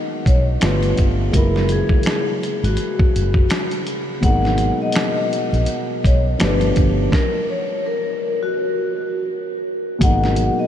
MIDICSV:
0, 0, Header, 1, 5, 480
1, 0, Start_track
1, 0, Key_signature, 5, "minor"
1, 0, Tempo, 722892
1, 889, Time_signature, 4, 2, 24, 8
1, 7086, End_track
2, 0, Start_track
2, 0, Title_t, "Vibraphone"
2, 0, Program_c, 0, 11
2, 183, Note_on_c, 0, 73, 68
2, 297, Note_off_c, 0, 73, 0
2, 421, Note_on_c, 0, 71, 65
2, 632, Note_off_c, 0, 71, 0
2, 902, Note_on_c, 0, 70, 90
2, 1112, Note_off_c, 0, 70, 0
2, 1144, Note_on_c, 0, 68, 78
2, 1353, Note_off_c, 0, 68, 0
2, 1382, Note_on_c, 0, 68, 77
2, 1749, Note_off_c, 0, 68, 0
2, 1759, Note_on_c, 0, 66, 70
2, 2444, Note_off_c, 0, 66, 0
2, 2817, Note_on_c, 0, 78, 81
2, 3165, Note_off_c, 0, 78, 0
2, 3199, Note_on_c, 0, 75, 69
2, 3751, Note_off_c, 0, 75, 0
2, 4023, Note_on_c, 0, 73, 63
2, 4137, Note_off_c, 0, 73, 0
2, 4261, Note_on_c, 0, 71, 75
2, 4472, Note_off_c, 0, 71, 0
2, 4742, Note_on_c, 0, 70, 86
2, 4952, Note_off_c, 0, 70, 0
2, 4980, Note_on_c, 0, 73, 73
2, 5191, Note_off_c, 0, 73, 0
2, 5222, Note_on_c, 0, 70, 74
2, 5567, Note_off_c, 0, 70, 0
2, 5596, Note_on_c, 0, 66, 66
2, 6283, Note_off_c, 0, 66, 0
2, 6660, Note_on_c, 0, 78, 97
2, 7006, Note_off_c, 0, 78, 0
2, 7033, Note_on_c, 0, 75, 73
2, 7086, Note_off_c, 0, 75, 0
2, 7086, End_track
3, 0, Start_track
3, 0, Title_t, "Upright piano"
3, 0, Program_c, 1, 0
3, 0, Control_c, 1, 64, 127
3, 0, Note_on_c, 1, 51, 58
3, 0, Note_on_c, 1, 56, 51
3, 0, Note_on_c, 1, 58, 53
3, 0, Note_on_c, 1, 59, 45
3, 0, Note_on_c, 1, 66, 61
3, 372, Note_off_c, 1, 51, 0
3, 378, Note_off_c, 1, 56, 0
3, 383, Note_off_c, 1, 58, 0
3, 388, Note_off_c, 1, 59, 0
3, 393, Note_off_c, 1, 66, 0
3, 402, Note_on_c, 1, 50, 54
3, 408, Note_on_c, 1, 55, 52
3, 412, Note_on_c, 1, 57, 55
3, 417, Note_on_c, 1, 59, 53
3, 418, Control_c, 1, 64, 0
3, 422, Note_on_c, 1, 65, 64
3, 549, Control_c, 1, 64, 127
3, 871, Note_on_c, 1, 49, 57
3, 882, Note_on_c, 1, 54, 51
3, 885, Note_off_c, 1, 50, 0
3, 888, Note_off_c, 1, 55, 0
3, 890, Note_on_c, 1, 56, 55
3, 891, Note_off_c, 1, 57, 0
3, 893, Note_off_c, 1, 59, 0
3, 896, Note_off_c, 1, 65, 0
3, 899, Control_c, 1, 64, 0
3, 902, Note_on_c, 1, 58, 52
3, 911, Note_on_c, 1, 64, 64
3, 1033, Control_c, 1, 64, 127
3, 2773, Note_off_c, 1, 49, 0
3, 2779, Note_off_c, 1, 54, 0
3, 2783, Note_off_c, 1, 56, 0
3, 2789, Note_off_c, 1, 58, 0
3, 2792, Note_on_c, 1, 47, 59
3, 2794, Note_off_c, 1, 64, 0
3, 2802, Note_on_c, 1, 54, 53
3, 2811, Note_on_c, 1, 56, 55
3, 2818, Control_c, 1, 64, 0
3, 2822, Note_on_c, 1, 58, 55
3, 2832, Note_on_c, 1, 63, 56
3, 2916, Control_c, 1, 64, 127
3, 4214, Note_off_c, 1, 47, 0
3, 4219, Note_off_c, 1, 54, 0
3, 4224, Note_off_c, 1, 56, 0
3, 4229, Note_off_c, 1, 58, 0
3, 4234, Note_off_c, 1, 63, 0
3, 4239, Note_on_c, 1, 47, 60
3, 4244, Note_on_c, 1, 53, 58
3, 4249, Note_on_c, 1, 55, 53
3, 4254, Note_on_c, 1, 57, 54
3, 4258, Control_c, 1, 64, 0
3, 4260, Note_on_c, 1, 61, 54
3, 4303, Note_off_c, 1, 61, 0
3, 4303, Note_on_c, 1, 62, 67
3, 4358, Control_c, 1, 64, 127
3, 4724, Note_off_c, 1, 47, 0
3, 4727, Note_off_c, 1, 53, 0
3, 4729, Note_off_c, 1, 55, 0
3, 4732, Note_off_c, 1, 57, 0
3, 4739, Control_c, 1, 64, 0
3, 4756, Note_off_c, 1, 62, 0
3, 6631, Note_on_c, 1, 47, 60
3, 6640, Note_on_c, 1, 54, 56
3, 6652, Note_on_c, 1, 56, 56
3, 6662, Note_on_c, 1, 58, 60
3, 6671, Note_on_c, 1, 63, 64
3, 6783, Control_c, 1, 64, 127
3, 7086, Note_off_c, 1, 47, 0
3, 7086, Note_off_c, 1, 54, 0
3, 7086, Note_off_c, 1, 56, 0
3, 7086, Note_off_c, 1, 58, 0
3, 7086, Note_off_c, 1, 63, 0
3, 7086, End_track
4, 0, Start_track
4, 0, Title_t, "Fingered electric bass"
4, 0, Program_c, 2, 33
4, 178, Note_on_c, 2, 35, 74
4, 372, Note_off_c, 2, 35, 0
4, 416, Note_on_c, 2, 31, 88
4, 611, Note_off_c, 2, 31, 0
4, 658, Note_on_c, 2, 31, 86
4, 852, Note_off_c, 2, 31, 0
4, 891, Note_on_c, 2, 30, 88
4, 1198, Note_off_c, 2, 30, 0
4, 1749, Note_on_c, 2, 32, 87
4, 1834, Note_off_c, 2, 32, 0
4, 2097, Note_on_c, 2, 30, 84
4, 2292, Note_off_c, 2, 30, 0
4, 2811, Note_on_c, 2, 32, 94
4, 3118, Note_off_c, 2, 32, 0
4, 3671, Note_on_c, 2, 34, 93
4, 3756, Note_off_c, 2, 34, 0
4, 4017, Note_on_c, 2, 35, 75
4, 4212, Note_off_c, 2, 35, 0
4, 4256, Note_on_c, 2, 31, 93
4, 4451, Note_off_c, 2, 31, 0
4, 4500, Note_on_c, 2, 31, 83
4, 4693, Note_off_c, 2, 31, 0
4, 6650, Note_on_c, 2, 32, 88
4, 6958, Note_off_c, 2, 32, 0
4, 7086, End_track
5, 0, Start_track
5, 0, Title_t, "Drums"
5, 174, Note_on_c, 9, 36, 82
5, 181, Note_on_c, 9, 42, 59
5, 240, Note_off_c, 9, 36, 0
5, 247, Note_off_c, 9, 42, 0
5, 407, Note_on_c, 9, 42, 71
5, 411, Note_on_c, 9, 26, 75
5, 416, Note_on_c, 9, 38, 100
5, 473, Note_off_c, 9, 42, 0
5, 477, Note_off_c, 9, 26, 0
5, 482, Note_off_c, 9, 38, 0
5, 549, Note_on_c, 9, 42, 47
5, 615, Note_off_c, 9, 42, 0
5, 648, Note_on_c, 9, 42, 60
5, 655, Note_on_c, 9, 36, 71
5, 714, Note_off_c, 9, 42, 0
5, 721, Note_off_c, 9, 36, 0
5, 886, Note_on_c, 9, 36, 110
5, 889, Note_on_c, 9, 42, 80
5, 953, Note_off_c, 9, 36, 0
5, 956, Note_off_c, 9, 42, 0
5, 1036, Note_on_c, 9, 38, 34
5, 1102, Note_off_c, 9, 38, 0
5, 1121, Note_on_c, 9, 42, 64
5, 1188, Note_off_c, 9, 42, 0
5, 1257, Note_on_c, 9, 36, 82
5, 1324, Note_off_c, 9, 36, 0
5, 1349, Note_on_c, 9, 42, 58
5, 1370, Note_on_c, 9, 26, 66
5, 1375, Note_on_c, 9, 38, 82
5, 1416, Note_off_c, 9, 42, 0
5, 1436, Note_off_c, 9, 26, 0
5, 1442, Note_off_c, 9, 38, 0
5, 1616, Note_on_c, 9, 42, 57
5, 1683, Note_off_c, 9, 42, 0
5, 1756, Note_on_c, 9, 42, 43
5, 1822, Note_off_c, 9, 42, 0
5, 1838, Note_on_c, 9, 42, 72
5, 1905, Note_off_c, 9, 42, 0
5, 1988, Note_on_c, 9, 36, 108
5, 2055, Note_off_c, 9, 36, 0
5, 2098, Note_on_c, 9, 42, 63
5, 2164, Note_off_c, 9, 42, 0
5, 2219, Note_on_c, 9, 36, 79
5, 2285, Note_off_c, 9, 36, 0
5, 2324, Note_on_c, 9, 42, 65
5, 2328, Note_on_c, 9, 26, 83
5, 2334, Note_on_c, 9, 38, 87
5, 2391, Note_off_c, 9, 42, 0
5, 2395, Note_off_c, 9, 26, 0
5, 2400, Note_off_c, 9, 38, 0
5, 2466, Note_on_c, 9, 42, 48
5, 2532, Note_off_c, 9, 42, 0
5, 2567, Note_on_c, 9, 42, 53
5, 2633, Note_off_c, 9, 42, 0
5, 2807, Note_on_c, 9, 36, 96
5, 2809, Note_on_c, 9, 42, 71
5, 2873, Note_off_c, 9, 36, 0
5, 2876, Note_off_c, 9, 42, 0
5, 2956, Note_on_c, 9, 38, 35
5, 3022, Note_off_c, 9, 38, 0
5, 3040, Note_on_c, 9, 42, 62
5, 3106, Note_off_c, 9, 42, 0
5, 3270, Note_on_c, 9, 42, 74
5, 3290, Note_on_c, 9, 26, 69
5, 3296, Note_on_c, 9, 38, 93
5, 3336, Note_off_c, 9, 42, 0
5, 3357, Note_off_c, 9, 26, 0
5, 3362, Note_off_c, 9, 38, 0
5, 3538, Note_on_c, 9, 42, 62
5, 3604, Note_off_c, 9, 42, 0
5, 3677, Note_on_c, 9, 42, 42
5, 3744, Note_off_c, 9, 42, 0
5, 3761, Note_on_c, 9, 42, 76
5, 3827, Note_off_c, 9, 42, 0
5, 4014, Note_on_c, 9, 36, 76
5, 4020, Note_on_c, 9, 42, 60
5, 4080, Note_off_c, 9, 36, 0
5, 4087, Note_off_c, 9, 42, 0
5, 4248, Note_on_c, 9, 42, 68
5, 4252, Note_on_c, 9, 26, 86
5, 4257, Note_on_c, 9, 38, 98
5, 4314, Note_off_c, 9, 42, 0
5, 4318, Note_off_c, 9, 26, 0
5, 4323, Note_off_c, 9, 38, 0
5, 4389, Note_on_c, 9, 42, 50
5, 4455, Note_off_c, 9, 42, 0
5, 4489, Note_on_c, 9, 42, 61
5, 4496, Note_on_c, 9, 36, 74
5, 4555, Note_off_c, 9, 42, 0
5, 4562, Note_off_c, 9, 36, 0
5, 4729, Note_on_c, 9, 36, 93
5, 4735, Note_on_c, 9, 38, 80
5, 4796, Note_off_c, 9, 36, 0
5, 4802, Note_off_c, 9, 38, 0
5, 6647, Note_on_c, 9, 36, 109
5, 6650, Note_on_c, 9, 42, 81
5, 6713, Note_off_c, 9, 36, 0
5, 6716, Note_off_c, 9, 42, 0
5, 6797, Note_on_c, 9, 38, 36
5, 6863, Note_off_c, 9, 38, 0
5, 6882, Note_on_c, 9, 42, 62
5, 6948, Note_off_c, 9, 42, 0
5, 7086, End_track
0, 0, End_of_file